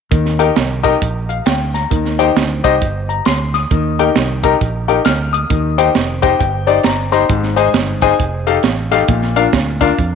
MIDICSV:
0, 0, Header, 1, 4, 480
1, 0, Start_track
1, 0, Key_signature, -3, "major"
1, 0, Tempo, 448430
1, 121, Time_signature, 4, 2, 24, 8
1, 10865, End_track
2, 0, Start_track
2, 0, Title_t, "Grand piano"
2, 0, Program_c, 0, 0
2, 116, Note_on_c, 0, 51, 61
2, 419, Note_on_c, 0, 70, 73
2, 419, Note_on_c, 0, 79, 85
2, 421, Note_on_c, 0, 63, 79
2, 422, Note_on_c, 0, 67, 69
2, 522, Note_off_c, 0, 70, 0
2, 522, Note_off_c, 0, 79, 0
2, 524, Note_off_c, 0, 63, 0
2, 524, Note_off_c, 0, 67, 0
2, 858, Note_off_c, 0, 51, 0
2, 892, Note_on_c, 0, 67, 75
2, 894, Note_on_c, 0, 63, 85
2, 894, Note_on_c, 0, 70, 81
2, 894, Note_on_c, 0, 75, 94
2, 999, Note_off_c, 0, 67, 0
2, 1000, Note_off_c, 0, 63, 0
2, 1000, Note_off_c, 0, 70, 0
2, 1001, Note_off_c, 0, 75, 0
2, 1382, Note_on_c, 0, 77, 58
2, 1554, Note_off_c, 0, 77, 0
2, 1563, Note_on_c, 0, 79, 62
2, 1849, Note_off_c, 0, 79, 0
2, 1865, Note_on_c, 0, 82, 61
2, 2038, Note_on_c, 0, 51, 60
2, 2322, Note_off_c, 0, 82, 0
2, 2344, Note_on_c, 0, 67, 73
2, 2344, Note_on_c, 0, 79, 93
2, 2345, Note_on_c, 0, 72, 74
2, 2346, Note_on_c, 0, 63, 79
2, 2446, Note_off_c, 0, 79, 0
2, 2447, Note_off_c, 0, 63, 0
2, 2447, Note_off_c, 0, 67, 0
2, 2447, Note_off_c, 0, 72, 0
2, 2780, Note_off_c, 0, 51, 0
2, 2824, Note_on_c, 0, 63, 84
2, 2825, Note_on_c, 0, 72, 80
2, 2827, Note_on_c, 0, 75, 91
2, 2828, Note_on_c, 0, 67, 79
2, 2927, Note_off_c, 0, 63, 0
2, 2928, Note_off_c, 0, 72, 0
2, 2928, Note_off_c, 0, 75, 0
2, 2929, Note_off_c, 0, 67, 0
2, 3307, Note_on_c, 0, 82, 59
2, 3478, Note_off_c, 0, 82, 0
2, 3488, Note_on_c, 0, 84, 59
2, 3773, Note_off_c, 0, 84, 0
2, 3790, Note_on_c, 0, 87, 58
2, 3973, Note_on_c, 0, 51, 63
2, 4245, Note_off_c, 0, 87, 0
2, 4274, Note_on_c, 0, 63, 75
2, 4274, Note_on_c, 0, 70, 66
2, 4275, Note_on_c, 0, 67, 71
2, 4275, Note_on_c, 0, 79, 88
2, 4372, Note_off_c, 0, 70, 0
2, 4373, Note_off_c, 0, 63, 0
2, 4373, Note_off_c, 0, 67, 0
2, 4373, Note_off_c, 0, 79, 0
2, 4708, Note_off_c, 0, 51, 0
2, 4747, Note_on_c, 0, 82, 83
2, 4749, Note_on_c, 0, 63, 83
2, 4749, Note_on_c, 0, 67, 74
2, 4749, Note_on_c, 0, 70, 76
2, 4849, Note_off_c, 0, 82, 0
2, 4850, Note_off_c, 0, 63, 0
2, 4850, Note_off_c, 0, 67, 0
2, 4850, Note_off_c, 0, 70, 0
2, 5226, Note_on_c, 0, 79, 84
2, 5228, Note_on_c, 0, 67, 73
2, 5228, Note_on_c, 0, 70, 69
2, 5229, Note_on_c, 0, 63, 71
2, 5329, Note_off_c, 0, 79, 0
2, 5330, Note_off_c, 0, 63, 0
2, 5330, Note_off_c, 0, 67, 0
2, 5330, Note_off_c, 0, 70, 0
2, 5405, Note_on_c, 0, 89, 61
2, 5692, Note_off_c, 0, 89, 0
2, 5704, Note_on_c, 0, 87, 58
2, 5884, Note_on_c, 0, 51, 58
2, 6162, Note_off_c, 0, 87, 0
2, 6187, Note_on_c, 0, 67, 71
2, 6189, Note_on_c, 0, 63, 81
2, 6189, Note_on_c, 0, 79, 93
2, 6190, Note_on_c, 0, 72, 72
2, 6289, Note_off_c, 0, 67, 0
2, 6290, Note_off_c, 0, 63, 0
2, 6290, Note_off_c, 0, 79, 0
2, 6291, Note_off_c, 0, 72, 0
2, 6623, Note_off_c, 0, 51, 0
2, 6659, Note_on_c, 0, 67, 78
2, 6660, Note_on_c, 0, 63, 82
2, 6661, Note_on_c, 0, 72, 75
2, 6662, Note_on_c, 0, 75, 68
2, 6664, Note_on_c, 0, 79, 90
2, 6765, Note_off_c, 0, 67, 0
2, 6766, Note_off_c, 0, 63, 0
2, 6766, Note_off_c, 0, 72, 0
2, 6768, Note_off_c, 0, 79, 0
2, 6832, Note_off_c, 0, 75, 0
2, 6843, Note_on_c, 0, 79, 72
2, 7125, Note_off_c, 0, 79, 0
2, 7138, Note_on_c, 0, 72, 66
2, 7139, Note_on_c, 0, 67, 65
2, 7140, Note_on_c, 0, 74, 89
2, 7141, Note_on_c, 0, 63, 77
2, 7142, Note_on_c, 0, 79, 57
2, 7244, Note_off_c, 0, 72, 0
2, 7245, Note_off_c, 0, 67, 0
2, 7246, Note_off_c, 0, 63, 0
2, 7246, Note_off_c, 0, 74, 0
2, 7312, Note_off_c, 0, 79, 0
2, 7323, Note_on_c, 0, 82, 69
2, 7604, Note_off_c, 0, 82, 0
2, 7621, Note_on_c, 0, 67, 69
2, 7623, Note_on_c, 0, 72, 73
2, 7623, Note_on_c, 0, 82, 80
2, 7624, Note_on_c, 0, 63, 80
2, 7624, Note_on_c, 0, 84, 63
2, 7726, Note_off_c, 0, 67, 0
2, 7727, Note_off_c, 0, 63, 0
2, 7727, Note_off_c, 0, 72, 0
2, 7727, Note_off_c, 0, 82, 0
2, 7792, Note_off_c, 0, 84, 0
2, 7803, Note_on_c, 0, 44, 65
2, 8096, Note_on_c, 0, 72, 75
2, 8097, Note_on_c, 0, 68, 77
2, 8098, Note_on_c, 0, 80, 83
2, 8099, Note_on_c, 0, 63, 79
2, 8203, Note_off_c, 0, 72, 0
2, 8204, Note_off_c, 0, 68, 0
2, 8204, Note_off_c, 0, 80, 0
2, 8205, Note_off_c, 0, 63, 0
2, 8542, Note_off_c, 0, 44, 0
2, 8586, Note_on_c, 0, 63, 88
2, 8586, Note_on_c, 0, 80, 92
2, 8587, Note_on_c, 0, 68, 74
2, 8587, Note_on_c, 0, 72, 76
2, 8688, Note_off_c, 0, 63, 0
2, 8688, Note_off_c, 0, 68, 0
2, 8688, Note_off_c, 0, 72, 0
2, 8688, Note_off_c, 0, 80, 0
2, 9063, Note_on_c, 0, 69, 72
2, 9064, Note_on_c, 0, 63, 75
2, 9066, Note_on_c, 0, 67, 75
2, 9066, Note_on_c, 0, 77, 79
2, 9166, Note_off_c, 0, 69, 0
2, 9167, Note_off_c, 0, 63, 0
2, 9168, Note_off_c, 0, 67, 0
2, 9168, Note_off_c, 0, 77, 0
2, 9541, Note_on_c, 0, 69, 70
2, 9543, Note_on_c, 0, 63, 79
2, 9543, Note_on_c, 0, 67, 74
2, 9544, Note_on_c, 0, 77, 90
2, 9645, Note_off_c, 0, 69, 0
2, 9646, Note_off_c, 0, 63, 0
2, 9646, Note_off_c, 0, 67, 0
2, 9647, Note_off_c, 0, 77, 0
2, 9720, Note_on_c, 0, 46, 63
2, 10020, Note_on_c, 0, 62, 78
2, 10022, Note_on_c, 0, 65, 69
2, 10022, Note_on_c, 0, 77, 90
2, 10023, Note_on_c, 0, 70, 65
2, 10124, Note_off_c, 0, 62, 0
2, 10125, Note_off_c, 0, 65, 0
2, 10125, Note_off_c, 0, 70, 0
2, 10125, Note_off_c, 0, 77, 0
2, 10459, Note_off_c, 0, 46, 0
2, 10498, Note_on_c, 0, 62, 87
2, 10498, Note_on_c, 0, 77, 84
2, 10499, Note_on_c, 0, 65, 79
2, 10500, Note_on_c, 0, 70, 74
2, 10602, Note_off_c, 0, 62, 0
2, 10602, Note_off_c, 0, 77, 0
2, 10603, Note_off_c, 0, 65, 0
2, 10604, Note_off_c, 0, 70, 0
2, 10865, End_track
3, 0, Start_track
3, 0, Title_t, "Fingered electric bass"
3, 0, Program_c, 1, 33
3, 125, Note_on_c, 1, 39, 90
3, 532, Note_off_c, 1, 39, 0
3, 609, Note_on_c, 1, 36, 70
3, 1015, Note_off_c, 1, 36, 0
3, 1094, Note_on_c, 1, 34, 96
3, 1498, Note_off_c, 1, 34, 0
3, 1570, Note_on_c, 1, 38, 82
3, 1976, Note_off_c, 1, 38, 0
3, 2049, Note_on_c, 1, 39, 94
3, 2456, Note_off_c, 1, 39, 0
3, 2531, Note_on_c, 1, 38, 79
3, 2784, Note_off_c, 1, 38, 0
3, 2829, Note_on_c, 1, 36, 81
3, 2980, Note_off_c, 1, 36, 0
3, 3018, Note_on_c, 1, 31, 91
3, 3421, Note_off_c, 1, 31, 0
3, 3497, Note_on_c, 1, 38, 78
3, 3901, Note_off_c, 1, 38, 0
3, 3973, Note_on_c, 1, 39, 99
3, 4378, Note_off_c, 1, 39, 0
3, 4458, Note_on_c, 1, 36, 72
3, 4861, Note_off_c, 1, 36, 0
3, 4938, Note_on_c, 1, 34, 88
3, 5341, Note_off_c, 1, 34, 0
3, 5415, Note_on_c, 1, 38, 83
3, 5820, Note_off_c, 1, 38, 0
3, 5894, Note_on_c, 1, 39, 91
3, 6299, Note_off_c, 1, 39, 0
3, 6376, Note_on_c, 1, 29, 77
3, 6780, Note_off_c, 1, 29, 0
3, 6856, Note_on_c, 1, 31, 100
3, 7260, Note_off_c, 1, 31, 0
3, 7336, Note_on_c, 1, 31, 90
3, 7740, Note_off_c, 1, 31, 0
3, 7808, Note_on_c, 1, 32, 98
3, 8215, Note_off_c, 1, 32, 0
3, 8286, Note_on_c, 1, 31, 78
3, 8694, Note_off_c, 1, 31, 0
3, 8774, Note_on_c, 1, 29, 91
3, 9178, Note_off_c, 1, 29, 0
3, 9247, Note_on_c, 1, 33, 82
3, 9654, Note_off_c, 1, 33, 0
3, 9725, Note_on_c, 1, 34, 103
3, 10132, Note_off_c, 1, 34, 0
3, 10206, Note_on_c, 1, 38, 72
3, 10612, Note_off_c, 1, 38, 0
3, 10691, Note_on_c, 1, 41, 96
3, 10865, Note_off_c, 1, 41, 0
3, 10865, End_track
4, 0, Start_track
4, 0, Title_t, "Drums"
4, 124, Note_on_c, 9, 36, 108
4, 124, Note_on_c, 9, 42, 78
4, 231, Note_off_c, 9, 42, 0
4, 232, Note_off_c, 9, 36, 0
4, 276, Note_on_c, 9, 38, 32
4, 383, Note_off_c, 9, 38, 0
4, 427, Note_on_c, 9, 42, 72
4, 534, Note_off_c, 9, 42, 0
4, 602, Note_on_c, 9, 42, 66
4, 605, Note_on_c, 9, 38, 102
4, 709, Note_off_c, 9, 42, 0
4, 712, Note_off_c, 9, 38, 0
4, 901, Note_on_c, 9, 42, 62
4, 904, Note_on_c, 9, 36, 80
4, 1008, Note_off_c, 9, 42, 0
4, 1011, Note_off_c, 9, 36, 0
4, 1091, Note_on_c, 9, 36, 83
4, 1095, Note_on_c, 9, 42, 69
4, 1198, Note_off_c, 9, 36, 0
4, 1202, Note_off_c, 9, 42, 0
4, 1391, Note_on_c, 9, 42, 52
4, 1498, Note_off_c, 9, 42, 0
4, 1561, Note_on_c, 9, 42, 80
4, 1570, Note_on_c, 9, 38, 106
4, 1668, Note_off_c, 9, 42, 0
4, 1677, Note_off_c, 9, 38, 0
4, 1869, Note_on_c, 9, 38, 38
4, 1872, Note_on_c, 9, 42, 68
4, 1976, Note_off_c, 9, 38, 0
4, 1979, Note_off_c, 9, 42, 0
4, 2047, Note_on_c, 9, 36, 104
4, 2047, Note_on_c, 9, 42, 80
4, 2154, Note_off_c, 9, 36, 0
4, 2154, Note_off_c, 9, 42, 0
4, 2199, Note_on_c, 9, 38, 31
4, 2306, Note_off_c, 9, 38, 0
4, 2353, Note_on_c, 9, 42, 69
4, 2460, Note_off_c, 9, 42, 0
4, 2529, Note_on_c, 9, 42, 66
4, 2532, Note_on_c, 9, 38, 108
4, 2636, Note_off_c, 9, 42, 0
4, 2639, Note_off_c, 9, 38, 0
4, 2828, Note_on_c, 9, 42, 65
4, 2830, Note_on_c, 9, 36, 81
4, 2935, Note_off_c, 9, 42, 0
4, 2937, Note_off_c, 9, 36, 0
4, 3016, Note_on_c, 9, 36, 87
4, 3019, Note_on_c, 9, 42, 72
4, 3123, Note_off_c, 9, 36, 0
4, 3127, Note_off_c, 9, 42, 0
4, 3316, Note_on_c, 9, 42, 48
4, 3423, Note_off_c, 9, 42, 0
4, 3483, Note_on_c, 9, 42, 82
4, 3492, Note_on_c, 9, 38, 91
4, 3590, Note_off_c, 9, 42, 0
4, 3599, Note_off_c, 9, 38, 0
4, 3792, Note_on_c, 9, 38, 35
4, 3795, Note_on_c, 9, 42, 66
4, 3899, Note_off_c, 9, 38, 0
4, 3902, Note_off_c, 9, 42, 0
4, 3969, Note_on_c, 9, 42, 75
4, 3972, Note_on_c, 9, 36, 104
4, 4077, Note_off_c, 9, 42, 0
4, 4080, Note_off_c, 9, 36, 0
4, 4274, Note_on_c, 9, 42, 68
4, 4381, Note_off_c, 9, 42, 0
4, 4447, Note_on_c, 9, 42, 68
4, 4450, Note_on_c, 9, 38, 100
4, 4554, Note_off_c, 9, 42, 0
4, 4557, Note_off_c, 9, 38, 0
4, 4747, Note_on_c, 9, 42, 62
4, 4752, Note_on_c, 9, 36, 75
4, 4854, Note_off_c, 9, 42, 0
4, 4859, Note_off_c, 9, 36, 0
4, 4937, Note_on_c, 9, 36, 85
4, 4939, Note_on_c, 9, 42, 69
4, 5044, Note_off_c, 9, 36, 0
4, 5046, Note_off_c, 9, 42, 0
4, 5237, Note_on_c, 9, 42, 49
4, 5344, Note_off_c, 9, 42, 0
4, 5404, Note_on_c, 9, 42, 80
4, 5413, Note_on_c, 9, 38, 98
4, 5511, Note_off_c, 9, 42, 0
4, 5520, Note_off_c, 9, 38, 0
4, 5717, Note_on_c, 9, 42, 69
4, 5824, Note_off_c, 9, 42, 0
4, 5890, Note_on_c, 9, 42, 82
4, 5891, Note_on_c, 9, 36, 98
4, 5997, Note_off_c, 9, 42, 0
4, 5998, Note_off_c, 9, 36, 0
4, 6193, Note_on_c, 9, 42, 76
4, 6300, Note_off_c, 9, 42, 0
4, 6367, Note_on_c, 9, 42, 64
4, 6371, Note_on_c, 9, 38, 102
4, 6475, Note_off_c, 9, 42, 0
4, 6478, Note_off_c, 9, 38, 0
4, 6667, Note_on_c, 9, 42, 55
4, 6671, Note_on_c, 9, 36, 88
4, 6774, Note_off_c, 9, 42, 0
4, 6778, Note_off_c, 9, 36, 0
4, 6856, Note_on_c, 9, 36, 89
4, 6858, Note_on_c, 9, 42, 72
4, 6963, Note_off_c, 9, 36, 0
4, 6965, Note_off_c, 9, 42, 0
4, 7154, Note_on_c, 9, 42, 53
4, 7261, Note_off_c, 9, 42, 0
4, 7316, Note_on_c, 9, 42, 76
4, 7325, Note_on_c, 9, 38, 109
4, 7423, Note_off_c, 9, 42, 0
4, 7432, Note_off_c, 9, 38, 0
4, 7629, Note_on_c, 9, 38, 34
4, 7632, Note_on_c, 9, 42, 68
4, 7736, Note_off_c, 9, 38, 0
4, 7739, Note_off_c, 9, 42, 0
4, 7809, Note_on_c, 9, 42, 80
4, 7810, Note_on_c, 9, 36, 99
4, 7916, Note_off_c, 9, 42, 0
4, 7917, Note_off_c, 9, 36, 0
4, 7958, Note_on_c, 9, 38, 30
4, 8065, Note_off_c, 9, 38, 0
4, 8108, Note_on_c, 9, 42, 72
4, 8215, Note_off_c, 9, 42, 0
4, 8284, Note_on_c, 9, 42, 70
4, 8287, Note_on_c, 9, 38, 100
4, 8391, Note_off_c, 9, 42, 0
4, 8394, Note_off_c, 9, 38, 0
4, 8580, Note_on_c, 9, 42, 56
4, 8587, Note_on_c, 9, 36, 74
4, 8687, Note_off_c, 9, 42, 0
4, 8694, Note_off_c, 9, 36, 0
4, 8774, Note_on_c, 9, 36, 86
4, 8775, Note_on_c, 9, 42, 68
4, 8881, Note_off_c, 9, 36, 0
4, 8882, Note_off_c, 9, 42, 0
4, 9074, Note_on_c, 9, 42, 50
4, 9181, Note_off_c, 9, 42, 0
4, 9237, Note_on_c, 9, 42, 82
4, 9246, Note_on_c, 9, 38, 108
4, 9344, Note_off_c, 9, 42, 0
4, 9353, Note_off_c, 9, 38, 0
4, 9546, Note_on_c, 9, 38, 34
4, 9549, Note_on_c, 9, 42, 73
4, 9653, Note_off_c, 9, 38, 0
4, 9656, Note_off_c, 9, 42, 0
4, 9720, Note_on_c, 9, 42, 84
4, 9725, Note_on_c, 9, 36, 101
4, 9827, Note_off_c, 9, 42, 0
4, 9832, Note_off_c, 9, 36, 0
4, 9873, Note_on_c, 9, 38, 30
4, 9980, Note_off_c, 9, 38, 0
4, 10024, Note_on_c, 9, 42, 72
4, 10131, Note_off_c, 9, 42, 0
4, 10200, Note_on_c, 9, 42, 66
4, 10203, Note_on_c, 9, 38, 110
4, 10204, Note_on_c, 9, 36, 81
4, 10307, Note_off_c, 9, 42, 0
4, 10310, Note_off_c, 9, 38, 0
4, 10311, Note_off_c, 9, 36, 0
4, 10497, Note_on_c, 9, 42, 64
4, 10503, Note_on_c, 9, 36, 77
4, 10604, Note_off_c, 9, 42, 0
4, 10610, Note_off_c, 9, 36, 0
4, 10688, Note_on_c, 9, 36, 82
4, 10690, Note_on_c, 9, 42, 69
4, 10796, Note_off_c, 9, 36, 0
4, 10797, Note_off_c, 9, 42, 0
4, 10865, End_track
0, 0, End_of_file